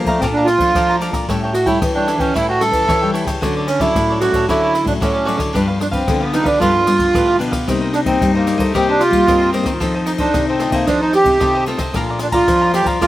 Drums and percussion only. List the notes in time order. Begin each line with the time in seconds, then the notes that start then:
0.06 kick, ride
0.22 kick, cross-stick, ride
0.47 cross-stick, ride
0.60 kick, ride
0.75 kick, cross-stick, ride
1.01 ride
1.13 kick, cross-stick, ride
1.29 kick, cross-stick, ride
1.54 cross-stick, ride
1.66 kick, ride
1.82 kick, cross-stick, ride
2.08 cross-stick, ride
2.20 kick, ride
2.35 kick, cross-stick, ride
2.61 cross-stick, ride
2.73 kick, ride
2.89 kick, cross-stick, ride
3.15 ride
3.27 kick, cross-stick, ride
3.42 kick, cross-stick, ride
3.68 cross-stick, ride
3.80 kick, ride
3.95 kick, cross-stick, ride
4.21 cross-stick, ride
4.33 kick, ride
4.49 kick, cross-stick, ride
4.75 cross-stick, ride
4.87 kick, ride
5.02 kick, cross-stick, ride
5.28 ride
5.39 kick, cross-stick, ride
5.55 kick, cross-stick, ride
5.81 cross-stick, ride
5.93 kick, ride
6.08 kick, cross-stick, ride
6.33 cross-stick, ride
6.46 kick, ride
6.61 kick, cross-stick, ride
6.87 cross-stick, ride
6.99 kick, ride
7.15 kick, cross-stick, ride
7.41 ride
7.53 kick, cross-stick, ride
7.68 kick, cross-stick, ride
7.94 cross-stick, ride
8.06 kick, ride
8.21 kick, cross-stick, ride
8.47 cross-stick, ride
8.59 kick, ride
8.75 kick, cross-stick, ride
9.00 cross-stick, ride
9.13 kick, ride
9.28 kick, cross-stick, ride
9.53 ride
9.65 kick, cross-stick, ride
9.81 kick, cross-stick, ride
10.06 cross-stick, ride
10.18 kick, ride
10.34 kick, cross-stick, ride
10.60 cross-stick, ride
10.72 kick, ride
10.87 kick, cross-stick, ride
11.13 cross-stick, ride
11.25 kick, ride
11.40 kick, cross-stick, ride
11.66 ride
11.78 kick, cross-stick, ride
11.94 kick, cross-stick, ride
12.19 cross-stick, ride
12.32 kick, ride
12.48 kick, cross-stick, ride
12.74 cross-stick, ride
12.86 kick, ride
13.02 kick, cross-stick, ride